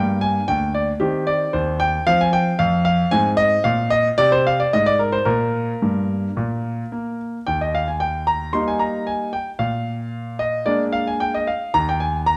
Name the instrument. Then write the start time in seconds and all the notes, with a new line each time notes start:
grand piano
Already playing: G2 A#3 G5
0.21 G#5
0.48 D2 G5
0.74 D5
1.00 D#3 C4 G4
1.27 D5
1.53 D#2 C5
1.80 G5
2.07 F3 C4 F5
2.21 G#5
2.33 G5
2.59 F2 F5
2.85 F5
3.11 G#2 C4 G#5
3.37 D#5
3.64 A#2 F5
3.90 D#5
4.18 C3 D5
4.32 C5
4.47 F5
4.60 D5
4.73 G#2 D#5
4.86 D5
4.99 A#4
5.12 C5
5.25 A#2 A#3 A#4
5.82 G2
6.36 A#2 A#3
6.92 A#3
7.47 D#2 G5
7.61 D#5
7.75 F5
7.88 G#5
8.00 G5
8.27 A#5
8.53 G3 A#3 D#4 C6
8.68 G#5
8.79 A#5
9.07 G#5
9.33 G5
9.59 A#2 F5
10.39 D#5
10.66 G#3 A#3 D4 D5
10.93 F5
11.07 G#5
11.20 G5
11.35 D#5
11.47 F5
11.74 D#2 A#5
11.89 G5
12.00 G#5
12.26 A#5